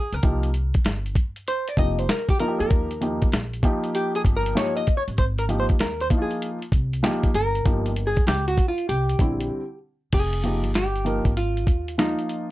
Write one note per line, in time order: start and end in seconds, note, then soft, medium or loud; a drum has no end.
0.00 0.14 G#4 medium
0.12 0.22 C#2 medium
0.12 1.06 A#4 medium
0.12 closed hi-hat medium
0.23 0.71 C2 loud
0.23 0.48 F3 medium
0.23 0.48 A#3 medium
0.23 0.48 D#4 medium
0.23 0.48 G4 medium
0.23 kick loud
0.23 closed hi-hat medium
0.43 closed hi-hat medium
0.54 closed hi-hat medium
0.74 kick medium
0.74 closed hi-hat soft
0.85 1.13 G1 medium
0.85 snare loud
0.85 closed hi-hat medium
1.06 closed hi-hat soft
1.15 kick loud
1.15 closed hi-hat medium
1.36 closed hi-hat medium
1.48 1.69 C5 medium
1.48 closed hi-hat medium
1.68 1.78 D5 medium
1.68 closed hi-hat medium
1.77 2.06 F1 medium
1.77 2.02 F3 medium
1.77 2.03 A#3 soft
1.77 2.03 D#4 medium
1.77 2.03 G4 medium
1.77 1.99 D#5 loud
1.77 kick medium
1.77 closed hi-hat medium
1.99 2.10 C5 medium
1.99 closed hi-hat medium
2.09 2.30 A#4 loud
2.09 snare loud
2.09 closed hi-hat medium
2.29 2.40 G4 medium
2.29 kick loud
2.29 closed hi-hat medium
2.39 2.87 F3 medium
2.39 2.87 A#3 medium
2.39 2.88 D#4 medium
2.39 2.49 F4 medium
2.39 2.59 A#4 medium
2.39 closed hi-hat medium
2.48 2.91 G4 medium
2.60 2.70 E2 medium
2.60 3.49 A#4 medium
2.60 closed hi-hat soft
2.71 3.18 D#2 loud
2.71 kick loud
2.71 closed hi-hat medium
2.91 closed hi-hat medium
3.01 3.26 F3 medium
3.01 3.26 A#3 medium
3.01 3.26 D#4 medium
3.01 3.27 G4 medium
3.01 closed hi-hat medium
3.22 kick medium
3.22 closed hi-hat soft
3.32 3.61 A#1 medium
3.32 snare loud
3.32 closed hi-hat medium
3.53 closed hi-hat medium
3.63 4.52 F3 medium
3.63 4.52 A#3 medium
3.63 4.52 D#4 medium
3.63 4.53 G4 medium
3.63 kick medium
3.63 closed hi-hat medium
3.84 closed hi-hat medium
3.95 4.15 G4 medium
3.95 closed hi-hat medium
4.15 4.21 G#4 medium
4.15 closed hi-hat medium
4.25 4.53 G1 medium
4.25 kick medium
4.25 closed hi-hat medium
4.37 4.57 A#4 loud
4.46 closed hi-hat medium
4.55 4.80 F3 medium
4.55 4.81 A#3 medium
4.55 4.81 D#4 medium
4.55 4.81 G4 medium
4.55 4.76 C#5 loud
4.55 snare loud
4.55 closed hi-hat medium
4.77 4.96 D#5 loud
4.77 closed hi-hat medium
4.87 kick loud
4.87 closed hi-hat medium
4.97 5.03 C#5 loud
5.08 5.17 A1 medium
5.08 closed hi-hat soft
5.18 5.65 G#1 medium
5.18 5.24 C5 loud
5.18 kick loud
5.18 closed hi-hat medium
5.38 5.44 A#4 medium
5.38 closed hi-hat medium
5.49 5.73 F3 medium
5.49 5.74 A#3 medium
5.49 5.74 D#4 medium
5.49 5.74 G4 medium
5.49 closed hi-hat medium
5.60 5.65 C5 medium
5.69 kick medium
5.69 closed hi-hat soft
5.79 6.08 D#2 loud
5.79 6.01 A#4 medium
5.79 snare loud
5.79 closed hi-hat medium
6.00 6.07 C5 medium
6.00 closed hi-hat soft
6.10 6.58 F3 medium
6.10 6.58 A#3 medium
6.10 6.58 D#4 medium
6.10 6.20 E4 medium
6.10 kick medium
6.10 closed hi-hat medium
6.18 6.62 F4 medium
6.18 6.50 G#4 medium
6.31 closed hi-hat soft
6.42 closed hi-hat medium
6.62 closed hi-hat soft
6.72 7.00 C2 medium
6.72 kick medium
6.72 closed hi-hat medium
6.93 closed hi-hat medium
7.03 7.28 F3 medium
7.03 7.28 A#3 medium
7.03 7.29 D#4 medium
7.03 7.29 G4 medium
7.03 snare loud
7.03 closed hi-hat medium
7.23 kick medium
7.23 closed hi-hat medium
7.34 7.62 G1 loud
7.34 8.09 A#4 loud
7.34 closed hi-hat medium
7.55 closed hi-hat medium
7.65 8.13 G1 loud
7.65 7.90 F3 medium
7.65 7.90 A#3 medium
7.65 7.91 D#4 medium
7.65 7.91 G4 medium
7.65 kick loud
7.65 closed hi-hat medium
7.86 closed hi-hat medium
7.96 closed hi-hat medium
8.07 8.27 G#4 medium
8.16 kick medium
8.16 closed hi-hat medium
8.27 8.55 C#2 loud
8.27 8.47 G4 medium
8.27 snare loud
8.27 closed hi-hat medium
8.48 8.68 F#4 medium
8.48 closed hi-hat soft
8.58 kick loud
8.58 closed hi-hat medium
8.68 8.89 F4 medium
8.78 closed hi-hat soft
8.89 9.17 C2 medium
8.89 9.78 G4 medium
8.89 closed hi-hat medium
9.09 closed hi-hat medium
9.19 9.48 A#1 medium
9.19 9.59 D3 medium
9.19 9.59 G3 medium
9.19 9.60 C4 medium
9.19 9.60 E4 medium
9.19 kick medium
9.19 closed hi-hat medium
9.40 closed hi-hat medium
10.13 10.64 F1 loud
10.13 10.75 G#4 loud
10.13 kick loud
10.13 closed hi-hat medium
10.13 crash medium
10.33 closed hi-hat medium
10.43 10.68 F3 medium
10.43 10.69 A#3 soft
10.43 10.69 D#4 soft
10.43 10.69 G4 medium
10.43 closed hi-hat medium
10.64 11.22 G1 medium
10.64 closed hi-hat soft
10.74 11.37 G4 medium
10.74 snare loud
10.74 closed hi-hat medium
10.96 closed hi-hat soft
11.05 11.30 F3 medium
11.05 11.30 A#3 medium
11.05 11.30 D#4 medium
11.05 11.31 A#4 medium
11.05 closed hi-hat medium
11.25 11.63 G#1 medium
11.25 kick medium
11.25 closed hi-hat medium
11.37 11.95 F4 medium
11.37 closed hi-hat medium
11.57 closed hi-hat medium
11.67 12.15 D#2 medium
11.67 kick medium
11.67 closed hi-hat medium
11.88 closed hi-hat medium
11.98 12.51 F3 medium
11.98 12.51 A#3 medium
11.98 12.51 D#4 medium
11.98 12.47 D#4 medium
11.98 12.51 F4 medium
11.98 snare loud
11.98 closed hi-hat medium
12.19 closed hi-hat soft
12.29 closed hi-hat medium